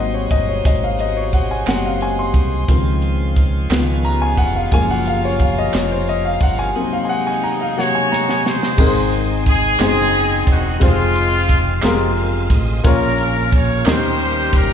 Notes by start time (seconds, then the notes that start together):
Already playing: G#1 F#3 G#3 A#3 C4 D#4 F#4 C5 D#5 F#5
0.14 C#5
0.31 G1 D#5, kick, closed hi-hat
0.49 C#5
0.65 G#1 D#5, kick, closed hi-hat
0.84 F5
0.99 D#5, closed hi-hat
1.17 C#5
1.33 F#5, kick, closed hi-hat
1.51 G#5
1.66 F#1 F#3 A#3 C4 F#5, snare, clap, closed hi-hat
1.86 F5
2.01 G#5, closed hi-hat
2.19 C6
2.34 C2, kick, closed hi-hat
2.68 C#2 C#3 D#3 F3 G#3 C4 F4 C5, kick, closed hi-hat
3.02 closed hi-hat
3.36 kick, closed hi-hat
3.69 C#2 D#3 F3 G#3 B3 C#4 F4 B4, snare, clap, closed hi-hat
4.05 A#5, closed hi-hat
4.22 G#5
4.37 F1 F#5, kick, closed hi-hat
4.56 F5
4.71 F#1 F3 G#3 A#3 C#4 F4 G#4 G#5, kick, closed hi-hat
4.78 A#4
4.91 F#5
5.05 F5, closed hi-hat
5.25 C#5
5.40 F5, kick, closed hi-hat
5.58 D#5
5.73 F1 C#5, snare, clap, closed hi-hat
5.92 C5
6.07 D#5, closed hi-hat
6.25 F5
6.40 G1 F#5, kick, closed hi-hat
6.59 G#5
6.75 C3 F#3 G#3 A#3 B3 C4 D#4 G#4
6.82 C3
6.93 F5
7.05 G#5
7.09 F#5
7.27 G#5
7.44 A#5
7.61 F5
7.77 C3 F#3 A#3 F#4 C#5 F#5, snare
7.95 G#5
8.12 A#5, snare
8.29 G#5, snare
8.46 D#4 G#4 C5, snare
8.63 snare
8.77 G#1 G#2 G#3 C4 D#4 G#4 A#4, kick, crash
8.87 C5
9.12 closed hi-hat
9.46 G#4, kick, closed hi-hat
9.79 F#1 G#3 C4 D#4 G#4 C5, snare, clap, closed hi-hat
10.14 closed hi-hat
10.47 E1 F#4, kick, closed hi-hat
10.79 F1 G3 G#3 C4 F4 G4 C5, kick, closed hi-hat
10.88 G#3 G#4
11.15 closed hi-hat
11.49 kick, closed hi-hat
11.82 F1 G#3 C4 F4 G#4 A#4, snare, clap, closed hi-hat
12.17 F5, closed hi-hat
12.50 A1 D#5, kick, closed hi-hat
12.84 A#1 A#2 A#3 C#4 F4 A#4 C#5, kick, closed hi-hat
13.18 closed hi-hat
13.52 C#5, kick, closed hi-hat
13.85 D#2 D#3 G3 A#3 C#4 D#4 G4 A#4 C5, snare, clap, closed hi-hat
14.20 closed hi-hat
14.53 G1 A#4, kick, closed hi-hat